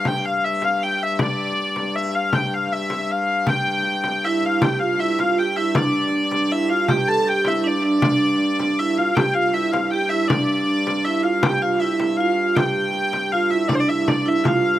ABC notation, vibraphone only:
X:1
M:3/4
L:1/8
Q:1/4=158
K:Ddor
V:1 name="Vibraphone"
z6 | z6 | z6 | z4 E2 |
G F E F G E | D4 E F | G A G E D D- | D4 E F |
G F E2 G E | D4 E F | G F E E F2 | G4 F E |
D E D E F2 |]